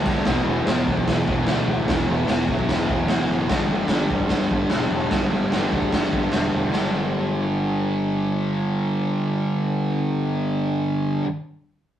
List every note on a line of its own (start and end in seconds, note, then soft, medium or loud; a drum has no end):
0.00 0.19 D2 medium
0.00 0.23 G2 medium
0.04 0.23 G3 medium
0.04 kick medium
0.04 ride medium
0.09 0.26 D3 medium
0.24 0.44 E1 loud
0.24 0.66 E2 medium
0.24 0.48 B2 medium
0.24 kick loud
0.24 snare loud
0.24 open hi-hat medium
0.28 0.44 E3 loud
0.44 0.63 E1 medium
0.44 0.70 E3 medium
0.49 0.67 B2 medium
0.65 0.84 E1 medium
0.65 1.44 E2 medium
0.65 0.89 B2 medium
0.65 snare loud
0.65 open hi-hat medium
0.70 0.86 E3 medium
0.86 1.05 B1 medium
0.86 1.25 E3 medium
0.86 kick loud
0.90 1.29 B2 soft
0.97 kick medium
1.08 1.25 E1 medium
1.08 kick loud
1.08 snare loud
1.08 open hi-hat medium
1.27 1.45 E1 loud
1.27 1.46 B2 medium
1.27 1.48 E3 medium
1.27 kick medium
1.45 1.65 D2 loud
1.45 1.85 E2 medium
1.45 1.87 B2 loud
1.45 snare loud
1.45 open hi-hat soft
1.49 1.89 E3 loud
1.66 1.85 D2 medium
1.86 2.06 E1 loud
1.86 2.24 E2 medium
1.86 2.10 B2 loud
1.86 kick loud
1.86 snare loud
1.86 open hi-hat medium
1.91 2.05 E3 medium
2.06 2.26 E1 medium
2.06 2.29 E3 medium
2.11 2.26 B2 medium
2.25 2.46 E1 medium
2.25 2.66 E2 medium
2.25 2.49 B2 medium
2.25 snare loud
2.25 open hi-hat medium
2.30 2.45 E3 medium
2.46 2.67 B1 medium
2.46 2.85 E3 medium
2.46 kick medium
2.50 2.90 B2 medium
2.59 kick medium
2.69 2.87 E1 medium
2.69 kick medium
2.69 snare loud
2.69 open hi-hat medium
2.86 3.07 E1 medium
2.86 3.10 E3 medium
2.86 kick medium
2.91 3.08 B2 medium
3.06 3.26 D2 loud
3.06 3.46 E2 medium
3.06 3.48 B2 loud
3.06 snare loud
3.06 open hi-hat medium
3.11 3.48 E3 loud
3.28 3.46 F#1 medium
3.47 3.68 G1 medium
3.47 3.89 G2 medium
3.47 3.72 D3 medium
3.47 kick loud
3.47 snare loud
3.47 open hi-hat medium
3.52 3.68 G3 loud
3.69 3.87 G1 medium
3.69 3.92 G3 medium
3.73 3.90 D3 medium
3.88 4.07 G1 medium
3.88 4.69 G2 medium
3.88 4.12 D3 medium
3.88 snare loud
3.88 open hi-hat medium
3.93 4.08 G3 medium
4.09 4.28 D2 medium
4.09 4.48 G3 medium
4.09 kick medium
4.13 4.52 D3 soft
4.20 kick medium
4.29 4.48 G1 medium
4.29 kick loud
4.29 snare medium
4.29 open hi-hat medium
4.49 4.68 G1 loud
4.49 4.74 G3 medium
4.49 kick medium
4.53 4.70 D3 medium
4.69 4.88 E1 medium
4.69 5.09 G2 medium
4.69 5.12 D3 medium
4.69 snare medium
4.69 open hi-hat medium
4.74 5.13 G3 loud
4.90 5.08 E1 medium
5.10 5.29 G1 medium
5.10 5.50 G2 loud
5.10 5.34 D3 medium
5.10 kick loud
5.10 snare loud
5.10 open hi-hat medium
5.15 5.30 G3 medium
5.31 5.49 G1 medium
5.31 5.55 G3 medium
5.36 5.53 D3 medium
5.51 5.70 G1 medium
5.51 5.91 G2 medium
5.51 5.75 D3 medium
5.51 snare loud
5.51 open hi-hat medium
5.56 5.71 G3 medium
5.72 5.90 D2 medium
5.72 6.09 G3 medium
5.72 kick medium
5.76 6.14 D3 medium
5.82 kick medium
5.92 6.11 G1 medium
5.92 kick medium
5.92 snare medium
5.92 open hi-hat medium
6.11 6.30 G1 medium
6.11 6.35 G3 medium
6.11 kick medium
6.15 6.33 D3 medium
6.32 6.51 E1 medium
6.32 6.69 G2 medium
6.32 6.72 D3 medium
6.32 snare loud
6.32 open hi-hat medium
6.36 6.72 G3 medium
6.53 6.71 E1 medium
6.71 11.21 G1 medium
6.71 11.22 G2 medium
6.71 11.24 D3 loud
6.71 snare medium
6.75 11.26 G3 loud